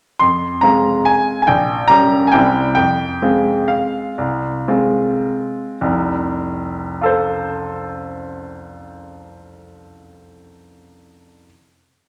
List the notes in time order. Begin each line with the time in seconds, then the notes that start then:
0.19 F2 C6
0.61 G#3 C4 F4 A#5
1.05 G#5
1.42 G#5
1.47 A#1 G5
1.88 G3 C#4 G4 A#5
2.27 G#5
2.32 C2 G3 C4 E4 G5
2.75 F2 G5
3.22 G#3 C4 F4
3.68 F5
4.18 C2
4.68 G#3 C4 F4
5.81 F1 C2
7.01 F4 A4
7.06 C5